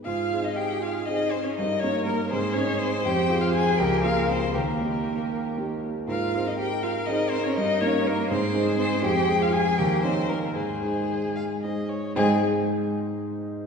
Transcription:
X:1
M:6/8
L:1/16
Q:3/8=79
K:Ab
V:1 name="Violin"
f3 e g2 f2 e2 c d | e2 d2 B2 c2 d2 c2 | g3 f a2 g2 f2 c2 | B8- B2 z2 |
f3 e g2 f2 e2 c d | e2 d2 B2 c4 c2 | g3 f a2 g2 c2 B2 | A8- A2 z2 |
A2 z8 z2 |]
V:2 name="Violin"
A12 | B6 A6 | c6 B6 | G8- G z3 |
B12- | B6 A6- | A6 B6 | c6 f2 e2 d2 |
C2 z8 z2 |]
V:3 name="Cello"
F3 E G2 F2 E2 C D | E2 D2 B,2 C2 D2 C2 | G3 F A2 G2 F2 C2 | B,8- B,2 z2 |
F3 E G2 F2 E2 C D | E2 D2 B,2 C4 C2 | G3 F A2 G2 C2 B,2 | A,8- A,2 z2 |
A,2 z8 z2 |]
V:4 name="Grand piano"
A,,2 [CEA]6 [CEA]4 | G,,2 [B,EB]4 A,,2 [CEA]4 | F,,2 [CFA]4 D,,2 [B,FA]4 | E,,2 [B,EG]6 [B,EG]4 |
A,,2 [CEA]6 [CEA]4 | G,,2 [B,EB]4 A,,2 [A,Ec]4 | F,,2 [A,Ac]4 E,,2 [B,Ed]4 | A,,2 [A,Ec]6 [A,Ec]4 |
[A,,A,Ece]2 z8 z2 |]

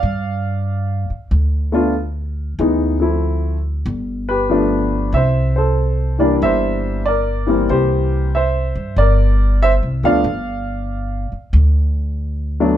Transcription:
X:1
M:4/4
L:1/8
Q:"Swing" 1/4=94
K:C
V:1 name="Grand piano"
[df]3 z4 z | z4 z [GB]3 | [ce] [Ac]2 [_Bd] [ce]2 [Bd]2 | [Gc]2 [ce]2 [_Bd]2 [ce] [df]- |
[df]3 z4 z |]
V:2 name="Grand piano"
z4 z [A,B,DF] z2 | [E,_A,B,_E] [F,=A,C=E]2 z3 [F,A,B,D]2 | z3 [E,G,_B,D]3 z [E,G,B,C]- | [E,G,_B,C]2 z4 z [F,A,=B,D] |
z6 z [^F,A,B,D] |]
V:3 name="Upright bass" clef=bass
G,,3 z D,,4 | D,,4 G,,,4 | C,,4 G,,,4 | C,,3 G,, G,,,2- (3G,,, C,, D,, |
G,,,3 z D,,4 |]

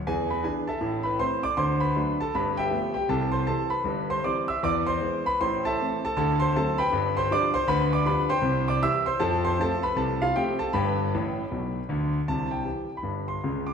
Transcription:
X:1
M:4/4
L:1/16
Q:"Swing" 1/4=157
K:C
V:1 name="Grand piano"
[^G^g]2 [Bb]2 [Gg]2 [Aea]4 [Bb]2 [cc']2 [dd']2 | [cc']2 [Bb]4 [Aa]2 [Bb]2 [Geg]4 [Gg]2 | [Aa]2 [cc']2 [Aa]2 [Bb]4 [cc']2 [dd']2 [ee']2 | [dd']2 [cc']4 [Bb]2 [cc']2 [Aea]4 [Aa]2 |
[Aa]2 [cc']2 [Aa]2 [Bgb]4 [cc']2 [dd']2 [cc']2 | [Bb]2 [dd']2 [Bb]2 [cgc']4 [dd']2 [ee']2 [cc']2 | [Aa]2 [cc']2 [Aa]2 [Bb]2 [Aa]2 [Ff]2 [Gg]2 [Aa]2 | [Bgb]12- [Bgb]2 z2 |
a2 g4- g b3 c'4 d'2 |]
V:2 name="Grand piano" clef=bass
[E,,E,]4 [E,B,D]4 [A,,,A,,]4 [E,A,C]4 | [D,,D,]4 [^F,A,D]4 [G,,,G,,]4 [=F,A,B,]4 | [C,,C,]4 [E,G,C]4 [G,,,G,,]4 [E,G,C]4 | [E,,E,]4 [E,^G,B,]4 [A,,,A,,]4 [E,A,C]4 |
[D,,D,]4 [^F,A,C]4 [G,,,G,,]4 [=F,G,D]4 | [D,,D,]4 [F,G,D]4 [C,,C,]4 [E,G,E]4 | [F,,F,]4 [F,A,C]4 [C,,C,]4 [F,A,C]4 | [G,,,G,,]4 [A,,,A,,]4 [B,,,B,,]4 [D,,D,]4 |
[C,,C,]4 [E,G,G]4 [G,,,G,,]4 [_D,,_D,]4 |]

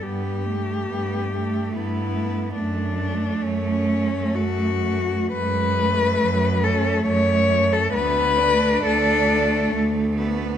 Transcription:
X:1
M:3/4
L:1/16
Q:1/4=69
K:D
V:1 name="Cello"
G8 E4 | D4 C4 F4 | [K:Bdor] B6 A2 c3 A | B4 A4 z4 |]
V:2 name="Cello"
B,2 A,2 B,2 A,2 B,4 | A,12 | [K:Bdor] G,4 F,2 C2 A,4 | B,2 D6 A,2 B,2 |]
V:3 name="Cello"
z2 A,4 A,4 A,2 | A,2 A,4 A,4 A,2 | [K:Bdor] z2 A,4 A,4 A,2 | A,2 A,4 A,4 A,2 |]
V:4 name="Cello" clef=bass
G,,4 G,,4 G,,4 | F,,4 F,,4 F,,4 | [K:Bdor] F,,4 F,,4 F,,4 | D,,4 D,,4 D,,4 |]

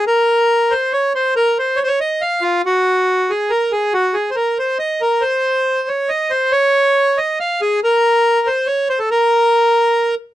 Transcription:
X:1
M:3/4
L:1/16
Q:1/4=140
K:Bbm
V:1 name="Accordion"
B6 c2 d2 c2 | B2 c2 d/2 c/2 d e2 f2 F2 | G6 A2 B2 A2 | G2 A3/2 c/2 B2 c2 e2 B2 |
c6 d2 e2 c2 | d6 e2 f2 A2 | B6 c2 d2 c =A | B8- B2 z2 |]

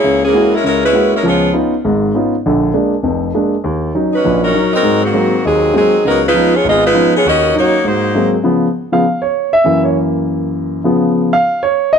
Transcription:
X:1
M:4/4
L:1/8
Q:"Swing" 1/4=200
K:Dbmix
V:1 name="Saxophone section"
[B,_FAd] [_F,B,DA]2 [A,DFB] [A,DFB] [A,DFc]2 [A,DFB] | [CFAd]2 z6 | z8 | z3 [G,DEc]2 [G,DEB]2 [G,=CEB]- |
[G,=CEB] [E,B,CG]3 [G,CEA]2 [G,CEA]2 | [G,CEB] [A,EFc]2 [CFAd] [CFAe] [A,EFc]2 [CFAd] | [DGBe]2 [B,EGd]2 [B,EG=c]3 z | z8 |
z8 | z8 |]
V:2 name="Grand piano"
z8 | z8 | z8 | z8 |
z8 | z8 | z8 | z3 f2 d2 _f- |
_f d z6 | z3 f2 d2 e |]
V:3 name="Grand piano" clef=bass
D,,2 [A,B,_FG] z D,,2 [A,B,FG] z | [D,,F,]2 [CDEF] z [A,,,A,,]2 [CDEF] z | [B,,,=D,]2 [A,B,=D] z [F,,,F,,]2 [A,B,D] z | E,,2 [G,DE] z [B,,,B,,]2 [G,DE] z |
A,,2 [G,A,B,=C] z E,,2 [G,A,B,C] z | D,,2 [F,CDE] z A,,,2 [F,CDE] z | E,,2 [G,DE] z A,,2 [G,A,B,=C] z | [D,F,C] z2 [D,F,C] z4 |
[G,,_F,B,]8 | [D,F,C]3 z4 z |]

